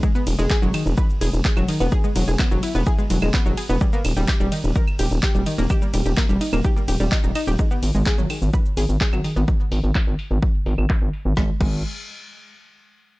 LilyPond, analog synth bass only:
\new Staff \with { instrumentName = "Analog synth bass" } { \clef bass \time 4/4 \key dis \phrygian \tempo 4 = 127 r8 e,,16 e,,16 r16 e,,16 r16 e,,16 r8 e,,16 e,,16 r16 e,,16 r16 e,,16 | r8 e,,16 e,,16 r16 e,,16 r16 e,,16 r8 e,,16 e,,16 r16 e,,16 r16 e,,16 | r8 dis,,16 dis,,16 r16 dis,,16 r16 dis,,16 r8 dis,,16 dis,,16 r16 dis,,16 r16 dis,,16 | r8 dis,,16 dis,,16 r16 dis,,16 r16 dis,,16 r8 dis,,16 dis,,16 r16 dis,,16 r16 dis,,16 |
r8 gis,,16 gis,,16 r16 gis,,16 r16 gis,,16 r8 gis,,16 gis,,16 r16 gis,,16 r16 gis,,16 | r8 gis,,16 gis,,16 r16 gis,,16 r16 gis,,16 r8 gis,,16 gis,,16 r16 gis,,16 r16 gis,,16 | gis,,16 r16 gis,,8 r2. | }